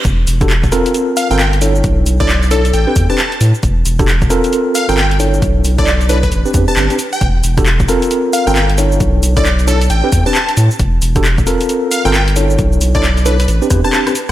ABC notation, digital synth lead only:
X:1
M:4/4
L:1/16
Q:"Swing 16ths" 1/4=134
K:Glyd
V:1 name="Digital synth lead"
z8 z2 =f g g z3 | z3 d z2 A z g3 a3 z2 | z8 z2 =f g g z3 | z3 d z2 B B z3 a z3 g |
z8 z2 =f g g z3 | z3 d z2 A z g3 a3 z2 | z8 z2 =f g g z3 | z3 d z2 B B z3 a z4 |]